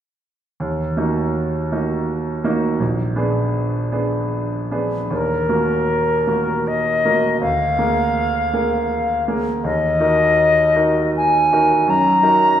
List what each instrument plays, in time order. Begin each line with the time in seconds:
0.60 grand piano D#2
0.97 grand piano A#3 D#4 F#4
1.72 grand piano A#3 D#4 F#4
2.44 grand piano A#3 D#4 F#4
2.80 grand piano A#1
3.16 grand piano B3 D4 G#4
3.92 grand piano B3 D4 G#4
4.71 grand piano B3 D4 G#4
5.10 grand piano D#2, flute A#4
5.49 grand piano A#3 F#4 A#4
6.27 grand piano A#3 F#4 A#4
6.67 flute D#5
7.05 grand piano A#3 F#4 A#4
7.41 grand piano D2, flute F5
7.79 grand piano A#3 G#4 A#4
8.54 grand piano A#3 G#4 A#4
9.28 grand piano A#3 G#4 A#4
9.64 grand piano D#2, flute D#5
10.00 grand piano D#4 F#4 A#4
10.75 grand piano D#4 F#4 A#4
11.16 flute G#5
11.53 grand piano D#4 F#4 A#4
11.87 grand piano F#2, flute A#5
12.23 grand piano D#4 F#4 A#4